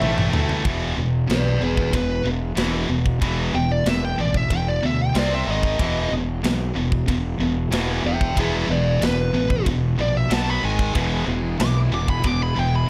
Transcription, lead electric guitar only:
0, 0, Header, 1, 2, 480
1, 0, Start_track
1, 0, Key_signature, 4, "major"
1, 0, Tempo, 643777
1, 485, Time_signature, 4, 2, 24, 8
1, 9614, End_track
2, 0, Start_track
2, 0, Title_t, "Lead electric guitar"
2, 0, Program_c, 0, 29
2, 0, Note_on_c, 0, 76, 95
2, 220, Note_off_c, 0, 76, 0
2, 980, Note_on_c, 0, 71, 81
2, 986, Note_on_c, 0, 74, 79
2, 1206, Note_off_c, 0, 74, 0
2, 1210, Note_off_c, 0, 71, 0
2, 1217, Note_on_c, 0, 68, 64
2, 1223, Note_on_c, 0, 71, 67
2, 1433, Note_off_c, 0, 68, 0
2, 1443, Note_off_c, 0, 71, 0
2, 1456, Note_on_c, 0, 71, 87
2, 1681, Note_off_c, 0, 71, 0
2, 2649, Note_on_c, 0, 79, 104
2, 2761, Note_off_c, 0, 79, 0
2, 2770, Note_on_c, 0, 74, 80
2, 2897, Note_off_c, 0, 74, 0
2, 2897, Note_on_c, 0, 76, 76
2, 3017, Note_off_c, 0, 76, 0
2, 3017, Note_on_c, 0, 79, 78
2, 3124, Note_off_c, 0, 79, 0
2, 3136, Note_on_c, 0, 74, 74
2, 3258, Note_off_c, 0, 74, 0
2, 3258, Note_on_c, 0, 76, 78
2, 3365, Note_off_c, 0, 76, 0
2, 3374, Note_on_c, 0, 79, 85
2, 3483, Note_off_c, 0, 79, 0
2, 3492, Note_on_c, 0, 74, 83
2, 3620, Note_off_c, 0, 74, 0
2, 3620, Note_on_c, 0, 76, 88
2, 3726, Note_off_c, 0, 76, 0
2, 3739, Note_on_c, 0, 79, 97
2, 3846, Note_off_c, 0, 79, 0
2, 3863, Note_on_c, 0, 74, 83
2, 3968, Note_off_c, 0, 74, 0
2, 3987, Note_on_c, 0, 76, 82
2, 4090, Note_off_c, 0, 76, 0
2, 4110, Note_on_c, 0, 75, 84
2, 4561, Note_off_c, 0, 75, 0
2, 6015, Note_on_c, 0, 76, 76
2, 6022, Note_on_c, 0, 79, 87
2, 6245, Note_off_c, 0, 79, 0
2, 6248, Note_off_c, 0, 76, 0
2, 6259, Note_on_c, 0, 68, 81
2, 6263, Note_on_c, 0, 76, 91
2, 6475, Note_off_c, 0, 68, 0
2, 6486, Note_off_c, 0, 76, 0
2, 6496, Note_on_c, 0, 71, 76
2, 6502, Note_on_c, 0, 74, 82
2, 6714, Note_off_c, 0, 71, 0
2, 6725, Note_off_c, 0, 74, 0
2, 6745, Note_on_c, 0, 71, 91
2, 7200, Note_off_c, 0, 71, 0
2, 7463, Note_on_c, 0, 74, 96
2, 7582, Note_off_c, 0, 74, 0
2, 7582, Note_on_c, 0, 76, 88
2, 7690, Note_off_c, 0, 76, 0
2, 7705, Note_on_c, 0, 81, 94
2, 7827, Note_off_c, 0, 81, 0
2, 7827, Note_on_c, 0, 83, 85
2, 7933, Note_off_c, 0, 83, 0
2, 7938, Note_on_c, 0, 80, 90
2, 8165, Note_off_c, 0, 80, 0
2, 8660, Note_on_c, 0, 86, 99
2, 8770, Note_off_c, 0, 86, 0
2, 8904, Note_on_c, 0, 86, 92
2, 9012, Note_off_c, 0, 86, 0
2, 9020, Note_on_c, 0, 83, 90
2, 9149, Note_off_c, 0, 83, 0
2, 9149, Note_on_c, 0, 86, 78
2, 9254, Note_off_c, 0, 86, 0
2, 9268, Note_on_c, 0, 83, 90
2, 9374, Note_off_c, 0, 83, 0
2, 9386, Note_on_c, 0, 79, 86
2, 9493, Note_off_c, 0, 79, 0
2, 9511, Note_on_c, 0, 83, 88
2, 9614, Note_off_c, 0, 83, 0
2, 9614, End_track
0, 0, End_of_file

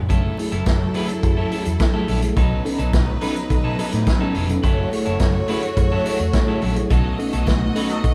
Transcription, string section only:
0, 0, Header, 1, 2, 480
1, 0, Start_track
1, 0, Tempo, 567108
1, 86, Time_signature, 4, 2, 24, 8
1, 6892, End_track
2, 0, Start_track
2, 0, Title_t, "String section"
2, 0, Program_c, 0, 48
2, 80, Note_on_c, 0, 54, 86
2, 80, Note_on_c, 0, 64, 79
2, 81, Note_on_c, 0, 69, 93
2, 1968, Note_off_c, 0, 54, 0
2, 1968, Note_off_c, 0, 64, 0
2, 1969, Note_off_c, 0, 69, 0
2, 2005, Note_on_c, 0, 54, 83
2, 2005, Note_on_c, 0, 71, 99
2, 2009, Note_on_c, 0, 63, 82
2, 3891, Note_off_c, 0, 54, 0
2, 3891, Note_off_c, 0, 71, 0
2, 3893, Note_off_c, 0, 63, 0
2, 3930, Note_on_c, 0, 73, 100
2, 3931, Note_on_c, 0, 57, 81
2, 3931, Note_on_c, 0, 66, 94
2, 5813, Note_off_c, 0, 73, 0
2, 5814, Note_off_c, 0, 57, 0
2, 5814, Note_off_c, 0, 66, 0
2, 5844, Note_on_c, 0, 75, 96
2, 5846, Note_on_c, 0, 57, 76
2, 5847, Note_on_c, 0, 66, 82
2, 6892, Note_off_c, 0, 57, 0
2, 6892, Note_off_c, 0, 66, 0
2, 6892, Note_off_c, 0, 75, 0
2, 6892, End_track
0, 0, End_of_file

